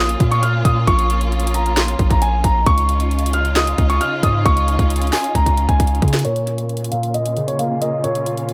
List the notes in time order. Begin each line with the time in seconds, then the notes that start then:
Already playing: A#1 A#3 C#4 F4 D#6
0.09 closed hi-hat
0.20 A#2, kick, closed hi-hat
0.31 C#6, closed hi-hat
0.43 F6, closed hi-hat
0.65 A#2 D#6, kick, closed hi-hat
0.87 A#1 C#6, kick, closed hi-hat
0.99 closed hi-hat
1.10 closed hi-hat
1.21 closed hi-hat
1.32 closed hi-hat
1.40 closed hi-hat
1.47 closed hi-hat
1.54 A#5, closed hi-hat
1.66 closed hi-hat
1.77 C6, snare, clap, closed hi-hat
1.88 closed hi-hat
1.99 A#1, kick, closed hi-hat
2.11 A#1 A#5, kick, closed hi-hat
2.22 G#5, closed hi-hat
2.44 A#1 A#5, kick, closed hi-hat
2.66 C#2 C#3 C#4 D#4 F4 C#6, kick, closed hi-hat
2.78 closed hi-hat
2.89 closed hi-hat
3.00 closed hi-hat
3.11 closed hi-hat
3.19 closed hi-hat
3.26 closed hi-hat
3.33 F6, closed hi-hat
3.45 closed hi-hat
3.56 D#6, snare, clap, closed hi-hat
3.67 closed hi-hat
3.78 C#2, kick, closed hi-hat
3.90 C#6, closed hi-hat
4.01 F6, closed hi-hat
4.23 G#2 D#6, kick, closed hi-hat
4.46 C#2 C#6, kick, closed hi-hat
4.57 closed hi-hat
4.68 closed hi-hat
4.79 C#2, kick, closed hi-hat
4.90 closed hi-hat
4.96 closed hi-hat
5.02 closed hi-hat
5.07 closed hi-hat
5.13 G#5, snare, clap, open hi-hat
5.24 closed hi-hat
5.35 C#2 A#5, kick, closed hi-hat
5.46 kick, closed hi-hat
5.57 closed hi-hat
5.69 C#2 G#5, kick, closed hi-hat
5.80 kick, closed hi-hat
5.87 closed hi-hat
5.95 closed hi-hat
6.02 C#3, kick, closed hi-hat
6.08 closed hi-hat
6.13 snare, closed hi-hat
6.19 closed hi-hat
6.25 A#2 A#3 C#4 F4 C#5, closed hi-hat
6.36 closed hi-hat
6.47 closed hi-hat
6.58 closed hi-hat
6.69 closed hi-hat
6.77 closed hi-hat
6.84 closed hi-hat
6.92 A#2 F5, closed hi-hat
7.03 closed hi-hat
7.14 D#5, closed hi-hat
7.26 closed hi-hat
7.36 C#3, closed hi-hat
7.48 C#5, closed hi-hat
7.59 A#3 F5, closed hi-hat
7.81 A#3 D#5, closed hi-hat
8.04 A#2 C#5, closed hi-hat
8.15 closed hi-hat
8.26 closed hi-hat
8.37 closed hi-hat
8.49 closed hi-hat